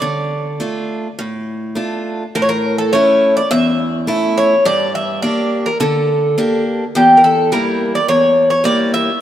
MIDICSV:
0, 0, Header, 1, 3, 480
1, 0, Start_track
1, 0, Tempo, 580833
1, 4, Time_signature, 4, 2, 24, 8
1, 3844, Tempo, 568720
1, 7691, End_track
2, 0, Start_track
2, 0, Title_t, "Bouzouki"
2, 0, Program_c, 0, 25
2, 0, Note_on_c, 0, 74, 77
2, 1415, Note_off_c, 0, 74, 0
2, 1943, Note_on_c, 0, 70, 81
2, 1992, Note_off_c, 0, 70, 0
2, 2000, Note_on_c, 0, 73, 69
2, 2052, Note_off_c, 0, 73, 0
2, 2056, Note_on_c, 0, 70, 90
2, 2283, Note_off_c, 0, 70, 0
2, 2300, Note_on_c, 0, 69, 84
2, 2410, Note_off_c, 0, 69, 0
2, 2419, Note_on_c, 0, 73, 92
2, 2779, Note_off_c, 0, 73, 0
2, 2782, Note_on_c, 0, 74, 88
2, 2890, Note_off_c, 0, 74, 0
2, 2903, Note_on_c, 0, 76, 101
2, 3612, Note_off_c, 0, 76, 0
2, 3616, Note_on_c, 0, 73, 93
2, 3849, Note_off_c, 0, 73, 0
2, 3852, Note_on_c, 0, 74, 94
2, 4075, Note_off_c, 0, 74, 0
2, 4096, Note_on_c, 0, 76, 88
2, 4324, Note_off_c, 0, 76, 0
2, 4327, Note_on_c, 0, 74, 86
2, 4695, Note_on_c, 0, 70, 80
2, 4702, Note_off_c, 0, 74, 0
2, 4810, Note_off_c, 0, 70, 0
2, 4813, Note_on_c, 0, 69, 73
2, 5502, Note_off_c, 0, 69, 0
2, 5796, Note_on_c, 0, 67, 81
2, 5971, Note_on_c, 0, 70, 64
2, 5975, Note_off_c, 0, 67, 0
2, 6021, Note_off_c, 0, 70, 0
2, 6029, Note_on_c, 0, 69, 86
2, 6246, Note_off_c, 0, 69, 0
2, 6268, Note_on_c, 0, 70, 84
2, 6596, Note_off_c, 0, 70, 0
2, 6629, Note_on_c, 0, 74, 90
2, 6733, Note_off_c, 0, 74, 0
2, 6744, Note_on_c, 0, 73, 91
2, 7084, Note_off_c, 0, 73, 0
2, 7094, Note_on_c, 0, 73, 86
2, 7204, Note_off_c, 0, 73, 0
2, 7220, Note_on_c, 0, 74, 94
2, 7437, Note_off_c, 0, 74, 0
2, 7462, Note_on_c, 0, 76, 100
2, 7691, Note_off_c, 0, 76, 0
2, 7691, End_track
3, 0, Start_track
3, 0, Title_t, "Steel-string acoustic guitar"
3, 0, Program_c, 1, 25
3, 14, Note_on_c, 1, 50, 67
3, 480, Note_off_c, 1, 50, 0
3, 495, Note_on_c, 1, 57, 45
3, 499, Note_on_c, 1, 62, 42
3, 506, Note_on_c, 1, 65, 38
3, 880, Note_off_c, 1, 57, 0
3, 883, Note_off_c, 1, 62, 0
3, 883, Note_off_c, 1, 65, 0
3, 980, Note_on_c, 1, 45, 65
3, 1445, Note_off_c, 1, 45, 0
3, 1449, Note_on_c, 1, 57, 44
3, 1457, Note_on_c, 1, 62, 36
3, 1458, Note_on_c, 1, 65, 49
3, 1838, Note_off_c, 1, 57, 0
3, 1839, Note_off_c, 1, 62, 0
3, 1842, Note_off_c, 1, 65, 0
3, 1945, Note_on_c, 1, 45, 76
3, 2406, Note_off_c, 1, 45, 0
3, 2422, Note_on_c, 1, 57, 49
3, 2426, Note_on_c, 1, 61, 41
3, 2434, Note_on_c, 1, 64, 47
3, 2802, Note_off_c, 1, 57, 0
3, 2806, Note_off_c, 1, 61, 0
3, 2807, Note_off_c, 1, 64, 0
3, 2898, Note_on_c, 1, 40, 79
3, 3358, Note_off_c, 1, 40, 0
3, 3366, Note_on_c, 1, 57, 50
3, 3372, Note_on_c, 1, 61, 38
3, 3374, Note_on_c, 1, 64, 56
3, 3748, Note_off_c, 1, 57, 0
3, 3750, Note_off_c, 1, 61, 0
3, 3753, Note_off_c, 1, 64, 0
3, 3846, Note_on_c, 1, 43, 73
3, 4316, Note_off_c, 1, 43, 0
3, 4327, Note_on_c, 1, 58, 47
3, 4332, Note_on_c, 1, 62, 40
3, 4339, Note_on_c, 1, 67, 45
3, 4717, Note_off_c, 1, 58, 0
3, 4717, Note_off_c, 1, 62, 0
3, 4717, Note_off_c, 1, 67, 0
3, 4817, Note_on_c, 1, 50, 76
3, 5282, Note_off_c, 1, 50, 0
3, 5300, Note_on_c, 1, 58, 49
3, 5303, Note_on_c, 1, 62, 51
3, 5308, Note_on_c, 1, 67, 46
3, 5682, Note_off_c, 1, 58, 0
3, 5685, Note_off_c, 1, 62, 0
3, 5685, Note_off_c, 1, 67, 0
3, 5786, Note_on_c, 1, 40, 69
3, 6246, Note_off_c, 1, 40, 0
3, 6264, Note_on_c, 1, 55, 52
3, 6268, Note_on_c, 1, 58, 36
3, 6270, Note_on_c, 1, 64, 53
3, 6643, Note_off_c, 1, 55, 0
3, 6644, Note_off_c, 1, 58, 0
3, 6647, Note_off_c, 1, 64, 0
3, 6741, Note_on_c, 1, 40, 65
3, 7200, Note_off_c, 1, 40, 0
3, 7208, Note_on_c, 1, 55, 48
3, 7210, Note_on_c, 1, 58, 45
3, 7218, Note_on_c, 1, 64, 50
3, 7590, Note_off_c, 1, 55, 0
3, 7592, Note_off_c, 1, 58, 0
3, 7593, Note_off_c, 1, 64, 0
3, 7691, End_track
0, 0, End_of_file